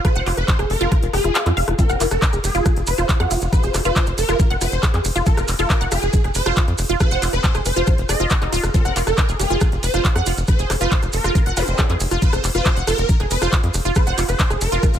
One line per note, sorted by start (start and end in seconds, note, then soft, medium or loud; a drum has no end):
0.05 0.09 F4 medium
0.05 0.26 C5 loud
0.05 kick loud
0.05 cross-stick medium
0.05 closed hi-hat medium
0.16 0.22 F1 medium
0.16 0.22 F#5 loud
0.16 closed hi-hat medium
0.26 0.33 F1 loud
0.26 0.31 F4 medium
0.26 clap soft
0.26 open hi-hat loud
0.37 0.43 F1 medium
0.37 0.58 C5 loud
0.37 cross-stick soft
0.37 closed hi-hat medium
0.48 kick loud
0.48 clap loud
0.48 closed hi-hat medium
0.59 0.65 F1 medium
0.59 0.66 G#4 medium
0.59 cross-stick medium
0.59 closed hi-hat medium
0.70 0.76 F1 loud
0.70 0.98 A#4 loud
0.70 open hi-hat medium
0.81 0.87 F1 medium
0.81 0.90 F4 loud
0.81 closed hi-hat medium
0.92 1.02 F4 medium
0.92 kick loud
0.92 cross-stick soft
0.92 closed hi-hat medium
1.03 1.09 F1 medium
1.03 closed hi-hat medium
1.13 1.20 F1 loud
1.13 1.20 G#4 medium
1.13 1.34 G#4 loud
1.13 cross-stick medium
1.13 open hi-hat loud
1.24 1.30 F1 medium
1.24 1.35 F4 medium
1.24 closed hi-hat medium
1.35 1.45 F5 loud
1.35 clap loud
1.35 closed hi-hat medium
1.46 1.52 F2 medium
1.46 1.56 F4 medium
1.46 cross-stick soft
1.46 clap soft
1.46 closed hi-hat medium
1.57 1.63 F1 loud
1.57 1.64 F5 loud
1.57 open hi-hat medium
1.68 1.74 F1 medium
1.68 1.72 F4 medium
1.68 cross-stick medium
1.68 closed hi-hat medium
1.79 1.86 C4 medium
1.79 1.83 F4 medium
1.79 1.99 A#4 loud
1.79 kick loud
1.79 closed hi-hat medium
1.79 maracas medium
1.89 1.96 F1 medium
1.89 1.96 C4 medium
1.89 1.96 F#5 loud
1.89 cross-stick soft
1.89 closed hi-hat medium
1.89 maracas soft
2.00 2.06 F1 loud
2.00 2.05 F4 medium
2.00 clap soft
2.00 open hi-hat loud
2.00 ride medium
2.00 maracas loud
2.11 2.17 F1 medium
2.11 2.32 A#4 loud
2.11 cross-stick medium
2.11 closed hi-hat medium
2.11 maracas soft
2.22 kick loud
2.22 clap loud
2.22 closed hi-hat medium
2.22 maracas medium
2.33 2.39 F1 medium
2.33 2.40 G#4 medium
2.33 closed hi-hat medium
2.33 maracas soft
2.44 2.50 F1 loud
2.44 2.72 G#4 medium
2.44 cross-stick soft
2.44 open hi-hat medium
2.44 ride medium
2.44 maracas medium
2.54 2.61 F1 medium
2.54 2.64 F4 loud
2.54 closed hi-hat medium
2.54 maracas soft
2.66 2.76 F4 medium
2.66 kick loud
2.66 cross-stick medium
2.66 closed hi-hat medium
2.66 maracas medium
2.76 2.83 F1 medium
2.76 closed hi-hat medium
2.87 2.93 F1 loud
2.87 3.08 C5 loud
2.87 open hi-hat loud
2.87 ride medium
2.87 maracas loud
2.98 3.04 F1 medium
2.98 3.05 F4 loud
2.98 cross-stick soft
2.98 closed hi-hat medium
2.98 maracas soft
3.09 3.13 F4 medium
3.09 kick loud
3.09 clap loud
3.09 closed hi-hat medium
3.09 maracas soft
3.20 3.26 F2 medium
3.20 3.81 F4 loud
3.20 3.27 F#5 loud
3.20 cross-stick medium
3.20 closed hi-hat medium
3.31 3.37 F1 loud
3.31 3.35 F4 medium
3.31 open hi-hat loud
3.31 ride medium
3.31 maracas medium
3.41 3.48 F1 medium
3.41 closed hi-hat medium
3.41 maracas soft
3.53 3.73 C5 loud
3.53 kick loud
3.53 cross-stick soft
3.53 closed hi-hat medium
3.53 maracas medium
3.63 3.70 F1 medium
3.63 3.70 G#4 medium
3.63 closed hi-hat medium
3.63 maracas soft
3.74 3.80 F1 loud
3.74 cross-stick medium
3.74 clap soft
3.74 open hi-hat loud
3.74 ride medium
3.74 maracas loud
3.84 3.91 F1 loud
3.84 3.95 F4 loud
3.84 4.06 C5 loud
3.84 closed hi-hat medium
3.84 maracas soft
3.96 4.06 F4 medium
3.96 kick loud
3.96 clap loud
3.96 closed hi-hat medium
3.96 maracas medium
4.06 4.13 F1 medium
4.06 cross-stick soft
4.06 closed hi-hat medium
4.06 maracas soft
4.18 4.24 F1 loud
4.18 4.45 A#4 loud
4.18 open hi-hat loud
4.18 ride medium
4.18 maracas medium
4.29 4.35 F1 medium
4.29 4.36 F4 loud
4.29 cross-stick medium
4.29 closed hi-hat medium
4.29 maracas soft
4.39 4.44 F4 medium
4.39 kick loud
4.39 closed hi-hat medium
4.39 maracas medium
4.50 4.56 F1 medium
4.50 4.57 F#5 loud
4.50 closed hi-hat medium
4.61 4.67 F1 loud
4.61 4.65 F4 medium
4.61 4.82 C5 loud
4.61 cross-stick soft
4.61 open hi-hat loud
4.61 ride medium
4.61 maracas loud
4.72 4.78 F1 medium
4.72 closed hi-hat medium
4.72 maracas soft
4.83 kick loud
4.83 cross-stick medium
4.83 clap loud
4.83 closed hi-hat medium
4.83 maracas medium
4.94 5.00 F2 medium
4.94 5.01 G#4 medium
4.94 clap soft
4.94 closed hi-hat medium
5.05 5.11 F1 loud
5.05 open hi-hat loud
5.05 ride medium
5.05 maracas medium
5.16 5.22 F1 medium
5.16 5.25 F4 loud
5.16 cross-stick soft
5.16 closed hi-hat medium
5.16 maracas soft
5.26 5.37 F4 medium
5.26 5.47 A#4 loud
5.26 kick loud
5.26 closed hi-hat medium
5.26 maracas medium
5.37 5.43 F1 medium
5.37 cross-stick medium
5.37 closed hi-hat medium
5.37 maracas soft
5.48 5.54 F1 loud
5.48 clap soft
5.48 open hi-hat loud
5.48 ride medium
5.48 maracas loud
5.59 5.65 F1 medium
5.59 5.66 F4 loud
5.59 5.80 A#4 loud
5.59 closed hi-hat medium
5.59 maracas soft
5.70 5.74 F4 medium
5.70 kick loud
5.70 cross-stick soft
5.70 clap loud
5.70 closed hi-hat medium
5.70 maracas medium
5.81 5.87 F1 medium
5.81 5.88 F#5 loud
5.81 closed hi-hat medium
5.81 maracas soft
5.92 5.98 F1 loud
5.92 5.96 F4 medium
5.92 6.19 G#4 loud
5.92 cross-stick medium
5.92 open hi-hat loud
5.92 ride medium
5.92 maracas loud
6.02 6.09 F1 medium
6.02 closed hi-hat medium
6.02 maracas soft
6.13 kick loud
6.13 closed hi-hat medium
6.13 maracas medium
6.24 6.30 F1 medium
6.24 6.31 G#4 medium
6.24 cross-stick soft
6.24 closed hi-hat medium
6.35 6.41 F1 loud
6.35 6.56 C5 loud
6.35 open hi-hat loud
6.35 ride medium
6.35 maracas loud
6.46 6.52 F1 medium
6.46 6.56 F4 loud
6.46 cross-stick medium
6.46 closed hi-hat medium
6.46 maracas soft
6.57 6.67 F4 medium
6.57 kick loud
6.57 clap loud
6.57 closed hi-hat medium
6.57 maracas medium
6.68 6.74 F2 medium
6.68 closed hi-hat medium
6.78 6.85 F1 loud
6.78 cross-stick soft
6.78 open hi-hat loud
6.78 ride medium
6.78 maracas medium
6.89 6.96 F1 medium
6.89 6.96 F4 loud
6.89 closed hi-hat medium
6.89 maracas soft
7.00 7.05 F4 medium
7.00 7.21 C5 loud
7.00 kick loud
7.00 cross-stick medium
7.00 closed hi-hat medium
7.00 maracas medium
7.11 7.17 F1 medium
7.11 7.18 F#5 loud
7.11 closed hi-hat medium
7.11 maracas soft
7.22 7.28 F1 loud
7.22 7.26 F4 medium
7.22 clap soft
7.22 open hi-hat loud
7.22 ride medium
7.22 maracas medium
7.33 7.39 F1 loud
7.33 7.54 C5 loud
7.33 cross-stick soft
7.33 closed hi-hat medium
7.33 maracas soft
7.44 kick loud
7.44 clap loud
7.44 closed hi-hat medium
7.44 maracas medium
7.55 7.61 F1 medium
7.55 7.62 G#4 medium
7.55 cross-stick medium
7.55 closed hi-hat soft
7.55 maracas soft
7.65 7.72 F1 loud
7.65 7.93 C5 loud
7.65 open hi-hat loud
7.65 ride medium
7.65 maracas loud
7.76 7.83 F1 medium
7.76 7.86 F4 loud
7.76 closed hi-hat medium
7.76 maracas soft
7.87 7.98 F4 medium
7.87 kick loud
7.87 cross-stick soft
7.87 closed hi-hat medium
7.87 maracas medium
7.98 8.04 F1 medium
7.98 closed hi-hat medium
8.09 8.15 F1 loud
8.09 8.16 G#4 medium
8.09 8.30 D#5 loud
8.09 cross-stick medium
8.09 open hi-hat loud
8.09 ride medium
8.09 maracas loud
8.20 8.26 F1 medium
8.20 8.24 F4 loud
8.20 closed hi-hat medium
8.20 maracas soft
8.30 8.35 F#4 loud
8.30 kick loud
8.30 clap loud
8.30 closed hi-hat medium
8.30 maracas medium
8.42 8.48 F1 medium
8.42 8.49 D#4 medium
8.42 cross-stick soft
8.42 clap soft
8.42 closed hi-hat soft
8.52 8.59 D#1 loud
8.52 8.63 F4 loud
8.52 open hi-hat loud
8.52 ride medium
8.52 maracas medium
8.63 8.70 F1 medium
8.63 cross-stick medium
8.63 closed hi-hat medium
8.63 maracas soft
8.74 8.81 C4 medium
8.74 8.78 F4 medium
8.74 8.95 A#4 loud
8.74 kick loud
8.74 closed hi-hat medium
8.74 maracas medium
8.85 8.91 F1 medium
8.85 8.92 C4 medium
8.85 8.92 F#5 loud
8.85 cross-stick soft
8.85 closed hi-hat medium
8.85 maracas soft
8.96 9.02 F1 loud
8.96 9.00 F4 medium
8.96 clap soft
8.96 open hi-hat loud
8.96 ride medium
8.96 maracas loud
9.07 9.13 F1 loud
9.07 9.28 A#4 loud
9.07 cross-stick medium
9.07 closed hi-hat soft
9.07 maracas soft
9.18 kick loud
9.18 clap loud
9.18 closed hi-hat medium
9.18 maracas soft
9.29 9.35 F1 medium
9.29 9.36 G#4 medium
9.29 closed hi-hat soft
9.29 maracas soft
9.39 9.46 F1 loud
9.39 9.46 A#3 medium
9.39 9.67 G#4 loud
9.39 cross-stick soft
9.39 open hi-hat medium
9.39 ride medium
9.39 maracas loud
9.50 9.56 F1 medium
9.50 9.57 A#3 medium
9.50 9.60 F4 loud
9.50 closed hi-hat medium
9.50 maracas soft
9.61 9.72 F4 medium
9.61 kick loud
9.61 cross-stick medium
9.61 closed hi-hat medium
9.61 maracas medium
9.72 9.78 F1 medium
9.72 closed hi-hat medium
9.83 9.89 F1 loud
9.83 10.04 C5 loud
9.83 open hi-hat loud
9.83 ride medium
9.83 maracas medium
9.94 10.00 F1 medium
9.94 10.01 F3 medium
9.94 10.01 F4 loud
9.94 cross-stick soft
9.94 closed hi-hat medium
9.94 maracas soft
10.05 10.12 F3 medium
10.05 10.09 F4 medium
10.05 kick loud
10.05 clap loud
10.05 closed hi-hat medium
10.05 maracas medium
10.16 10.22 F2 medium
10.16 10.22 F#5 loud
10.16 cross-stick medium
10.16 closed hi-hat medium
10.26 10.33 F1 loud
10.26 10.31 F4 medium
10.26 open hi-hat medium
10.26 ride medium
10.26 maracas medium
10.37 10.43 F1 medium
10.37 closed hi-hat medium
10.37 maracas soft
10.48 10.69 C5 loud
10.48 kick loud
10.48 cross-stick soft
10.48 closed hi-hat medium
10.48 maracas medium
10.59 10.65 F1 medium
10.59 10.66 G#4 medium
10.59 closed hi-hat medium
10.59 maracas soft
10.70 10.76 F1 loud
10.70 cross-stick medium
10.70 clap soft
10.70 open hi-hat loud
10.70 ride medium
10.70 maracas medium
10.81 10.87 F1 medium
10.81 10.90 F4 loud
10.81 11.02 C5 loud
10.81 closed hi-hat medium
10.81 maracas soft
10.92 kick loud
10.92 clap loud
10.92 closed hi-hat medium
10.92 maracas soft
11.03 11.09 F1 medium
11.03 cross-stick soft
11.03 closed hi-hat medium
11.03 maracas soft
11.13 11.19 F1 loud
11.13 11.41 A#4 loud
11.13 open hi-hat medium
11.13 ride medium
11.13 maracas medium
11.24 11.30 F1 medium
11.24 11.31 F4 loud
11.24 cross-stick medium
11.24 closed hi-hat medium
11.24 maracas soft
11.35 11.39 F4 medium
11.35 kick loud
11.35 closed hi-hat medium
11.35 maracas soft
11.46 11.52 F1 medium
11.46 11.53 F#5 loud
11.46 closed hi-hat medium
11.57 11.63 F1 loud
11.57 11.61 F4 medium
11.57 11.78 C5 loud
11.57 cross-stick soft
11.57 open hi-hat loud
11.57 ride medium
11.57 zap medium
11.57 maracas medium
11.67 11.74 F1 medium
11.67 closed hi-hat medium
11.67 maracas soft
11.78 kick loud
11.78 cross-stick medium
11.78 clap loud
11.78 closed hi-hat medium
11.78 maracas medium
11.89 11.96 F2 medium
11.89 11.96 G#4 medium
11.89 clap soft
11.89 closed hi-hat medium
12.00 12.06 F1 loud
12.00 open hi-hat medium
12.00 ride medium
12.00 maracas medium
12.11 12.17 F1 medium
12.11 12.21 F4 loud
12.11 cross-stick soft
12.11 closed hi-hat medium
12.11 maracas soft
12.22 12.32 F4 medium
12.22 12.43 C5 loud
12.22 kick loud
12.22 closed hi-hat medium
12.22 maracas soft
12.33 12.39 F1 medium
12.33 cross-stick medium
12.33 closed hi-hat medium
12.33 maracas soft
12.44 12.50 F1 loud
12.44 clap soft
12.44 open hi-hat loud
12.44 ride medium
12.44 maracas medium
12.55 12.61 F1 medium
12.55 12.62 F4 loud
12.55 12.76 C5 loud
12.55 closed hi-hat medium
12.55 maracas soft
12.65 12.70 F4 medium
12.65 kick loud
12.65 cross-stick soft
12.65 clap loud
12.65 closed hi-hat medium
12.65 maracas medium
12.76 12.83 F1 medium
12.76 12.83 F#5 loud
12.76 closed hi-hat medium
12.76 maracas soft
12.87 12.93 F1 loud
12.87 12.91 F4 medium
12.87 13.15 A#4 loud
12.87 cross-stick medium
12.87 open hi-hat medium
12.87 ride medium
12.87 maracas medium
12.98 13.04 F1 medium
12.98 closed hi-hat medium
12.98 maracas soft
13.09 kick loud
13.09 closed hi-hat medium
13.09 maracas medium
13.20 13.26 F1 medium
13.20 13.27 G#4 medium
13.20 cross-stick soft
13.20 closed hi-hat medium
13.31 13.37 F1 loud
13.31 13.52 C5 loud
13.31 open hi-hat loud
13.31 ride medium
13.31 maracas medium
13.42 13.48 F1 medium
13.42 13.51 F4 loud
13.42 cross-stick medium
13.42 closed hi-hat medium
13.42 maracas soft
13.53 13.63 F4 medium
13.53 kick loud
13.53 clap loud
13.53 closed hi-hat medium
13.53 maracas soft
13.63 13.70 F2 medium
13.63 closed hi-hat medium
13.74 13.80 F1 loud
13.74 cross-stick soft
13.74 open hi-hat medium
13.74 ride medium
13.74 maracas medium
13.85 13.91 F1 medium
13.85 13.92 F4 loud
13.85 closed hi-hat medium
13.85 maracas soft
13.95 14.00 F4 medium
13.95 14.17 C5 loud
13.95 kick loud
13.95 cross-stick medium
13.95 closed hi-hat medium
13.95 maracas medium
14.06 14.13 F1 medium
14.06 14.14 F#5 loud
14.06 closed hi-hat medium
14.06 maracas soft
14.18 14.24 F1 loud
14.18 14.22 F4 medium
14.18 clap soft
14.18 open hi-hat loud
14.18 ride medium
14.18 maracas loud
14.29 14.35 F1 loud
14.29 14.49 C5 loud
14.29 cross-stick soft
14.29 closed hi-hat medium
14.29 maracas soft
14.39 kick loud
14.39 clap loud
14.39 closed hi-hat medium
14.39 maracas medium
14.50 14.56 F1 medium
14.50 14.57 G#4 medium
14.50 cross-stick medium
14.50 closed hi-hat medium
14.50 maracas soft
14.61 14.67 F1 loud
14.61 14.89 A#4 loud
14.61 open hi-hat medium
14.61 ride medium
14.61 maracas medium
14.72 14.78 F1 medium
14.72 14.82 F4 loud
14.72 closed hi-hat medium
14.72 maracas soft
14.83 14.93 F4 medium
14.83 kick loud
14.83 cross-stick soft
14.83 closed hi-hat medium
14.83 maracas medium
14.94 14.99 F1 medium
14.94 closed hi-hat medium
14.94 maracas soft